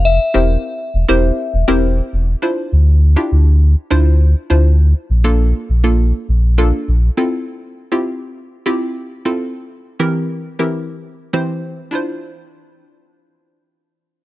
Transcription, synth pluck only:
\new Staff \with { instrumentName = "Synth pluck" } { \time 4/4 \key d \minor \tempo 4 = 101 r8 <c' e' g' bes' c''>4 r16 <c' e' g' bes' c''>8. r16 <c' e' g' bes' c''>4 r16 | <d' e' f' c''>4 r16 <d' e' f' g'>4 r16 <d' e' f' c''>8. r16 <d' e' f' c''>8 | r8. <bes d' f' a'>8. r16 <bes d' f' a'>4 r16 <bes d' f' a'>8. r16 | <c' e' f' a'>4 r16 <c' e' f' g'>4 r16 <c' e' f' g'>8. r16 <c' e' f' a'>8 |
r8. <e c' e' g' bes'>8. r16 <e c' e' g' bes'>4 r16 <e c' e' g' c''>8. r16 | <d' e' f' c''>1 | }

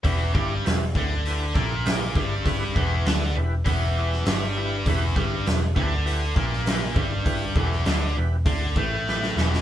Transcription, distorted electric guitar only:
\new Staff \with { instrumentName = "Distorted electric guitar" } { \clef bass \time 4/4 \key e \minor \tempo 4 = 100 <e, e>8 <g, g>8 e,8 <d d'>4 <ais, ais>4 <g, g>8~ | <g, g>8 <e, e>8 <d d'>8 e,8 <e, e>4 <g, g>4 | <e, e>8 <g, g>8 e,8 <d d'>4 <ais, ais>4 <g, g>8~ | <g, g>8 <e, e>8 <d d'>8 e,8 <d d'>8 <a, a>4 <e, e>8 | }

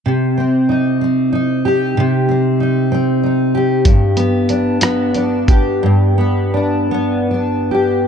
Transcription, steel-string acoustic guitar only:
\new Staff \with { instrumentName = "Steel-string acoustic guitar" } { \time 6/8 \key c \lydian \tempo 4. = 62 c8 c'8 ees'8 c'8 ees'8 g'8 | c8 c'8 ees'8 c'8 ees'8 g'8 | g,8 b8 d'8 b8 d'8 g'8 | g,8 b8 d'8 b8 d'8 g'8 | }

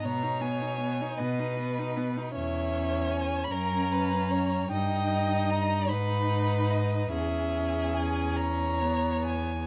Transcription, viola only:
\new Staff \with { instrumentName = "Viola" } { \time 6/8 \key gis \minor \tempo 4. = 50 b16 dis'16 b16 dis'16 b16 dis'16 b16 dis'16 b16 dis'16 b16 dis'16 | \key cis \dorian cis'4. cis'4. | dis'4. dis'4. | cis'2 b4 | }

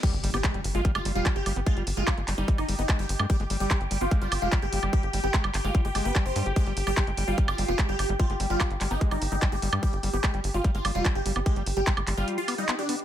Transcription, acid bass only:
\new Staff \with { instrumentName = "Acid bass" } { \clef bass \time 4/4 \tempo 4 = 147 g16 r16 g16 ces'16 aes16 g16 r16 aes16 g16 aes16 g16 g16 g16 r16 g16 ces'16 | aes16 g16 r16 aes16 g16 aes16 g16 g16 r8 g16 ces'16 aes16 g16 r16 aes16 | g16 aes16 g16 g16 r8 g16 ces'16 aes16 g16 r16 aes16 g16 aes16 g16 g16 | g16 r16 g16 ces'16 aes16 g16 r16 aes16 g16 aes16 aes16 ces'16 g16 r16 g16 g'16 |
aes16 g16 r16 g16 g16 aes16 g16 g16 r8 g16 ces'16 aes16 g16 r16 g16 | g16 aes16 g16 g16 g16 r16 g16 ces'16 aes16 g16 r16 g16 g16 aes16 g16 g16 | g16 r16 g16 ces'16 aes16 g16 r16 g16 g16 aes16 g16 g16 r8 g16 ces'16 | aes16 g16 r16 g16 g16 aes16 g16 g16 g16 r16 ces'16 g16 ces'16 g'16 ces'16 r16 | }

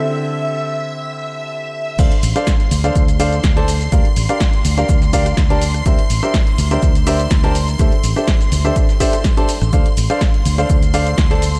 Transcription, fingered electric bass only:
\new Staff \with { instrumentName = "Fingered electric bass" } { \clef bass \time 4/4 \key d \minor \tempo 4 = 124 r1 | d,16 r16 a,,16 r8. d,16 r16 d,4 d,4 | d,16 r16 a,,16 r8. d,16 r16 d,4 d,4 | d,16 r16 a,,16 r8. d,16 r16 d,4 d,4 |
d,16 r16 a,,16 r8. d,16 r2 a,,16 | d,16 r16 a,,16 r8. d,16 r16 d,4 d,4 | }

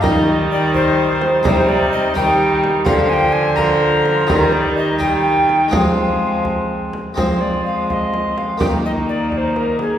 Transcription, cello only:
\new Staff \with { instrumentName = "Cello" } { \clef bass \time 6/8 \key f \dorian \tempo 4. = 84 ees2. | c4. ees4. | d2. | ees2. |
f2~ f8 r8 | f2. | ees2. | }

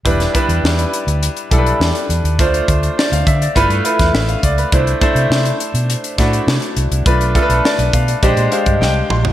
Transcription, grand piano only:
\new Staff \with { instrumentName = "Grand piano" } { \time 4/4 \key e \minor \tempo 4 = 103 << { r1 | r4 d''16 f''16 e''16 d''8 r8. e''16 f''16 d''16 b'16~ | b'16 r2. r8. | r4 d''8 f''16 d''8 r16 eis''8 g''8 bis''8 | } \\ { <g d' e' b'>8 <g d' e' b'>2 <g d' e' a' b'>4. | <a d' f' c''>8 r4. <a e' f' b'>8 <a e' f' b'>4. | <a d' e' c''>8 <a d' e' c''>2 <a d' e' fis'>4. | <a d' f' b'>8 <a d' f' a' b'>4. <gis d' g' bis'>8 <gis d' g' bis'>4. | } >> }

